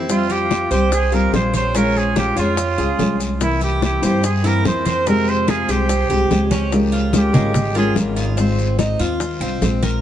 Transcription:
Already playing: F2 C4
0.08 F3 G3 C4 F4 G4, high bongo, high conga, long guiro, maracas
0.30 F4 G4, high conga, maracas
0.51 high bongo, high conga, short guiro, maracas
0.70 C2 G3 C4 G4 C5, high bongo, high conga, short guiro, maracas
0.91 G#4, muted nylon-string guitar stroke, high bongo, high conga, long guiro, maracas
1.12 G3 C4 F4 G4 A#4, high bongo, high conga, maracas
1.32 A#1 F3 G3 G4 C5, high bongo, low bongo, high conga, short guiro, maracas
1.54 C5 C#5, high bongo, high conga, short guiro, maracas
1.74 F3 G#3 C#4 F4 A#4, high bongo, high conga, long guiro, maracas
1.95 G#4, high conga, maracas
2.16 F4 G4, high bongo, high conga, short guiro, maracas
2.36 F2 G#3 C#4 F4 C#5, high bongo, high conga, short guiro, maracas
2.57 muted nylon-string guitar stroke, high bongo, high conga, long guiro, maracas
2.78 C#2 G#3 C#4 F4 G#4, high bongo, high conga, maracas
2.98 C2 F3 G#3 C#4 F4, high bongo, low bongo, high conga, short guiro, maracas
3.20 high bongo, short guiro, maracas
3.40 C3 E3 A#3 C4 E4, high bongo, high conga, long guiro, maracas
3.61 E4 G4, high conga, maracas
3.82 G4, high bongo, high conga, short guiro, maracas
4.02 G2 E3 A#3 C4 E4 G4 C5, high bongo, high conga, short guiro, maracas
4.23 G#4, muted nylon-string guitar stroke, high bongo, high conga, long guiro, maracas
4.44 E3 A#3 C4 E4 A#4, high bongo, high conga, maracas
4.65 E3 A#3 C4 E4 C5, high bongo, low bongo, high conga, short guiro, maracas
4.85 C5, high bongo, high conga, short guiro, maracas
5.07 C3 F3 G#3 C4 G4 A#4, high bongo, high conga, long guiro, maracas
5.27 C5, high conga, maracas
5.48 F4 G#4, high bongo, high conga, short guiro, maracas
5.68 C2 F3 G#3 C4 G4 C5, high bongo, high conga, short guiro, maracas
5.89 muted nylon-string guitar stroke, high bongo, high conga, long guiro, maracas
6.09 C2 F3 G#3 C4 G4, high bongo, high conga, maracas
6.30 C#2 F3 G#3 C4 G4, high bongo, low bongo, high conga, short guiro, maracas
6.51 C#4, high bongo, high conga, short guiro, maracas
6.71 C#3 F3 G#3 C#4 F4 A#4, high bongo, high conga, long guiro, maracas
6.92 F4, high conga, maracas
7.13 G#3 C#4 F4 A#4, high bongo, high conga, short guiro, maracas
7.17 G4
7.33 G#1 F3 G#3 C#4 F4 A#4, high bongo, high conga, low conga, short guiro, maracas
7.54 muted nylon-string guitar stroke, high bongo, high conga, low conga, long guiro, maracas
7.75 F3 G#3 C#4 F4 G#4 A#4, high conga, maracas
7.95 G#1 G#3 C#4 F4 A#4, high bongo, low bongo, high conga, short guiro, maracas
8.16 F4, high bongo, high conga, short guiro, maracas
8.37 G#3 C4 F4, high bongo, high conga, long guiro, maracas
8.58 high conga, maracas
8.79 G#3 C4 D#4 F4, high bongo, high conga, short guiro, maracas
8.99 D#2 C4 F4, high bongo, high conga, short guiro, maracas
9.20 muted nylon-string guitar stroke, high bongo, high conga, long guiro, maracas
9.40 C2 C4 F4, high conga, maracas
9.61 A#1 G#3 C4 F4, high bongo, low bongo, high conga, short guiro, maracas
9.83 A#4, high bongo, high conga, short guiro, maracas

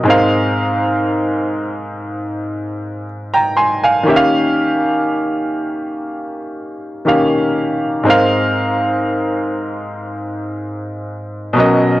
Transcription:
0.03 G#2 G#3 C4
0.08 A#4 F5
3.34 G5 A#5
3.57 G#5 C6
3.84 F5 G#5
4.03 D#3 A#3 C#4
4.08 G4 E5
4.16 F5
7.05 D#3 A#3 C#4 G4 F5
8.03 G#2 G#3 C4
8.08 A#4 F5
11.53 B2 F#3 C#4
11.58 A#4 D#5

